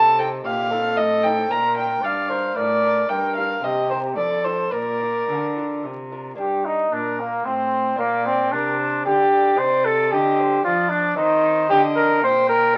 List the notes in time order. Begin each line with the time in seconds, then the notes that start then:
Already playing: C3 A4 A5
0.19 C4 D#4 A4 G5
0.44 A#2 G4 F5
0.70 C4 D#4 A4
0.97 A2 D#5
1.23 C4 D#4 A4 G5
1.49 A#2 A#4 A#5
1.77 D4 A#4 G5
2.02 G2 D5 F5
2.29 D4 A#4 C5
2.56 A2 A#4 D5
2.84 D4 A#4
3.09 G2 A#4 G5
3.36 D4 G4 A#4 F5
3.62 C3 G4 D#5
3.90 C4 G4 A#4 C5
4.17 F2 A4 D5
4.44 C4 F4 A4 C5
4.71 A#2 A#4 D5
5.00 D4 F4 A#4
5.29 D3
5.56 D4 F4 A#4
5.83 C3
6.11 D4 F4 A#4
6.35 G2 A#3 D4 G4
6.65 D#4
6.92 A#2 D4 A#4
7.20 A#3
7.45 A2 C4 C5
7.96 A#2 A#3 D4
8.00 D5
8.26 C4
8.51 C3 D4 A#4
8.81 C5
9.05 D3 G4 D5
9.55 C3 C4 D#4 C5
9.85 A4
10.11 D3 G4 D#5
10.40 C5
10.64 F3 F4 D5
10.89 D4
11.15 D#3 C4 D#4 C5
11.69 D3 G4 D#5
11.96 A#4
12.23 A#2 C5 G5
12.49 A#4
12.73 C4 D#4